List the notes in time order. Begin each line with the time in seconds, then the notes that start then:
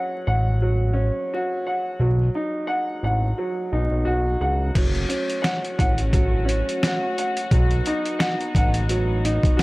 Already playing: F#3 C#4 F#5
0.27 A1 F#5
0.62 F#3
0.93 C#4
1.34 F#4
1.67 F#5
2.00 B1 F#3
2.35 D#4
2.67 F#5
3.03 A1 F#5
3.38 F#3
3.72 B1 D#4
3.91 B1
4.05 B1 F#4
4.41 C#2 F#5
4.75 F#1 F#3 A3 C#4 F#4, kick, closed hi-hat, crash
4.95 closed hi-hat
5.09 C#4, closed hi-hat
5.30 closed hi-hat
5.42 F#5, snare, closed hi-hat
5.65 closed hi-hat
5.79 A1 F#5, kick, closed hi-hat
5.98 closed hi-hat
6.13 F#3, kick, closed hi-hat
6.45 C#4, closed hi-hat
6.69 closed hi-hat
6.83 F#4, snare, closed hi-hat
7.18 F#5, closed hi-hat
7.37 closed hi-hat
7.51 B1 F#3 B3 D#4, kick, closed hi-hat
7.71 closed hi-hat
7.86 D#4, closed hi-hat
8.05 closed hi-hat
8.19 F#5, snare, closed hi-hat
8.41 closed hi-hat
8.55 A1 F#5, kick, closed hi-hat
8.74 closed hi-hat
8.89 F#3, closed hi-hat
9.25 D#4, closed hi-hat
9.43 kick, closed hi-hat
9.57 F#4, snare